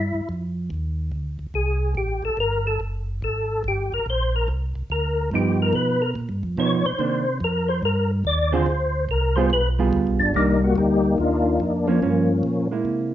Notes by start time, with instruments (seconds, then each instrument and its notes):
Already playing: tonewheel organ G2 E4
0.14 tonewheel organ G2
0.29 tonewheel organ F2
0.70 tonewheel organ D#2
1.12 tonewheel organ D2
1.39 tonewheel organ D2
1.54 tonewheel organ C2 G#4
1.95 tonewheel organ A1 G4
2.23 tonewheel organ A1 A4
2.37 tonewheel organ G1 A#4
2.67 tonewheel organ A4
2.80 tonewheel organ F#1
3.22 tonewheel organ G#1 A4
3.64 tonewheel organ G1 G4
3.92 tonewheel organ G1 A#4
4.06 tonewheel organ A#1 C5
4.36 tonewheel organ A#4
4.48 tonewheel organ C2
4.75 tonewheel organ C2
4.90 tonewheel organ D2 A#4
5.31 tonewheel organ G2 G4, hollow-body jazz guitar F3 B3 D#4
5.62 tonewheel organ A#4
5.73 tonewheel organ B2 B4
6.02 tonewheel organ A#4
6.15 tonewheel organ A#2
6.29 tonewheel organ G2
6.43 tonewheel organ F2
6.57 tonewheel organ B2 C#5, hollow-body jazz guitar F3 B3 D#4
6.86 tonewheel organ B2 C5
6.98 tonewheel organ C3, hollow-body jazz guitar D#3 A#3 D4
7.40 tonewheel organ F2 A#4
7.68 tonewheel organ C5
7.83 tonewheel organ G2 A#4
8.25 tonewheel organ D#2 D5
8.52 hollow-body jazz guitar D3 C4 F4 G#4, tonewheel organ C5
8.66 tonewheel organ D2
9.09 tonewheel organ C2 A#4
9.36 hollow-body jazz guitar G3 B3 F4 G#4, tonewheel organ C5
9.50 tonewheel organ B1 B4
9.79 hollow-body jazz guitar G3 B3 F4 G#4
9.93 tonewheel organ D2
10.07 tonewheel organ B1
10.19 tonewheel organ G1 D4
10.34 tonewheel organ C2 G3 A#3 D#4, hollow-body jazz guitar D#3 A#3 D4
10.64 tonewheel organ F#4
10.76 tonewheel organ D2 A#3 D#4 G4
11.18 tonewheel organ D#2 A#3 D4 F4
11.60 tonewheel organ F2 D#4
11.87 hollow-body jazz guitar F3 A#3 C#4, tonewheel organ F3 A#3 C#4
12.02 tonewheel organ G2, hollow-body jazz guitar F3 A#3 C#4
12.43 tonewheel organ A#2
12.71 hollow-body jazz guitar G#3 A#3 E4
12.85 tonewheel organ C3